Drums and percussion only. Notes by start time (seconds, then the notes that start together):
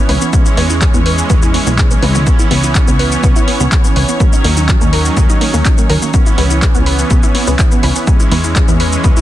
0.09 open hi-hat
0.22 shaker
0.33 kick, shaker
0.46 shaker
0.57 open hi-hat
0.70 shaker
0.82 kick, clap, shaker
0.94 shaker
1.06 open hi-hat
1.18 shaker
1.30 kick, shaker
1.42 shaker
1.54 open hi-hat
1.67 shaker
1.78 kick, clap, shaker
1.91 shaker
2.03 open hi-hat, high tom
2.15 mid tom, shaker
2.27 kick, shaker
2.39 shaker
2.51 open hi-hat
2.64 shaker
2.75 kick, clap, shaker
2.88 shaker
2.99 open hi-hat
3.12 shaker
3.23 kick, shaker
3.36 shaker
3.48 open hi-hat
3.60 shaker
3.72 kick, clap, shaker
3.84 shaker
3.96 open hi-hat
4.09 shaker
4.20 kick, shaker
4.33 shaker
4.44 open hi-hat
4.57 shaker
4.69 kick, clap, shaker
4.81 shaker
4.93 open hi-hat
5.05 shaker
5.17 kick, shaker
5.30 shaker
5.41 open hi-hat
5.54 shaker
5.65 kick, clap, shaker
5.78 shaker
5.90 open hi-hat
6.02 shaker
6.14 kick, shaker
6.26 shaker
6.38 open hi-hat
6.51 shaker
6.62 kick, clap, shaker
6.75 shaker
6.86 open hi-hat
6.99 shaker
7.10 kick, shaker
7.23 shaker
7.35 open hi-hat
7.47 shaker
7.59 kick, clap, shaker
7.71 shaker
7.83 open hi-hat
7.96 shaker
8.07 kick, shaker
8.20 shaker
8.32 open hi-hat
8.44 shaker
8.56 kick, clap, shaker
8.68 shaker
8.80 open hi-hat
8.93 shaker
9.04 kick, shaker
9.17 shaker